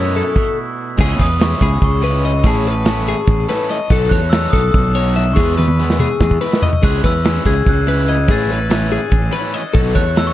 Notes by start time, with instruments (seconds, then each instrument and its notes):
Already playing: fingered electric bass F#2, clean electric guitar B2 E3 A3 E4 C#5, overdriven electric guitar F#3 B3 D#4 A4, glockenspiel E6
0.15 clean electric guitar C#4 A4, ride
0.35 kick, crash
0.98 fingered electric bass C#2, overdriven electric guitar G#3 C#4 E4 G#4, clean electric guitar G#4, kick, crash
1.19 fingered electric bass E2, clean electric guitar B4, glockenspiel D#6, kick, snare, ride
1.40 overdriven electric guitar G#3 C#4 E4 G#4, glockenspiel C#6, snare, ride
1.61 fingered electric bass C#2, clean electric guitar G#4, glockenspiel B5, kick, snare, ride
1.82 fingered electric bass C#2, glockenspiel C#6, kick, ride
2.02 overdriven electric guitar G#3 C#4 E4 G#4, clean electric guitar B4, ride
2.23 clean electric guitar D#5, ride
2.43 fingered electric bass A1, overdriven electric guitar A3 C#4 E4 A4, clean electric guitar G#4, glockenspiel A5, kick, ride
2.65 clean electric guitar B4, ride
2.85 overdriven electric guitar A3 C#4 E4 A4, snare, ride
3.07 clean electric guitar G#4, snare, ride
3.27 fingered electric bass A1, kick, ride
3.49 overdriven electric guitar A3 C#4 E4 A4, clean electric guitar B4, snare, ride
3.69 clean electric guitar D#5, snare, ride
3.90 fingered electric bass B1, overdriven electric guitar F#3 B3 D#4 A4, clean electric guitar A4, kick, ride
4.09 fingered electric bass E2, clean electric guitar C#5, glockenspiel F#6, kick, ride
4.30 overdriven electric guitar F#3 B3 D#4, glockenspiel E6, snare, ride
4.34 overdriven electric guitar A4
4.50 fingered electric bass B1, clean electric guitar A4, glockenspiel D#6, kick, snare, ride
4.72 fingered electric bass B1, glockenspiel E6, kick, snare, ride
4.95 overdriven electric guitar F#3 B3 D#4 A4, clean electric guitar C#5, ride
5.16 clean electric guitar E5, snare, ride
5.33 fingered electric bass E2, clean electric guitar G#4, glockenspiel C#6, kick, ride
5.38 overdriven electric guitar E3 G#3 B3 E4
5.58 clean electric guitar B4, high tom
5.68 high tom
5.79 overdriven electric guitar E3 G#3 B3 E4
5.90 snare
5.99 clean electric guitar G#4, mid tom
6.20 fingered electric bass E2, kick, snare
6.31 kick
6.41 overdriven electric guitar E3 G#3 B3 E4, clean electric guitar B4
6.53 snare
6.62 clean electric guitar D#5, floor tom
6.73 floor tom
6.83 fingered electric bass C#2, overdriven electric guitar C#3 G#3 C#4 E4, clean electric guitar G#4, glockenspiel F#6, kick, crash
7.04 fingered electric bass E2, clean electric guitar B4, glockenspiel E6, kick, snare, ride
7.25 overdriven electric guitar C#3 G#3 C#4 E4, snare, ride
7.45 fingered electric bass C#2, clean electric guitar G#4, glockenspiel G#6, kick, ride
7.66 fingered electric bass C#2, glockenspiel F#6, kick, snare, ride
7.87 overdriven electric guitar C#3 G#3 C#4 E4, clean electric guitar B4, glockenspiel F#6, ride
8.08 clean electric guitar D#5, glockenspiel G#6, ride
8.28 fingered electric bass A1, overdriven electric guitar E3 A3 C#4 E4, clean electric guitar G#4, glockenspiel A6, kick, ride
8.50 clean electric guitar B4, snare, ride
8.70 overdriven electric guitar E3 A3 C#4 E4, snare, ride
8.91 clean electric guitar G#4, snare, ride
9.11 fingered electric bass A1, kick, ride
9.32 overdriven electric guitar E3 A3 C#4 E4, clean electric guitar B4, ride
9.54 clean electric guitar D#5, ride
9.74 fingered electric bass B1, overdriven electric guitar F#3 B3 D#4 A4, clean electric guitar A4, kick, ride
9.95 fingered electric bass E2, clean electric guitar C#5, glockenspiel F#6, kick, ride
10.16 overdriven electric guitar F#3 B3 D#4 A4, glockenspiel E6, snare, ride
10.27 glockenspiel C#6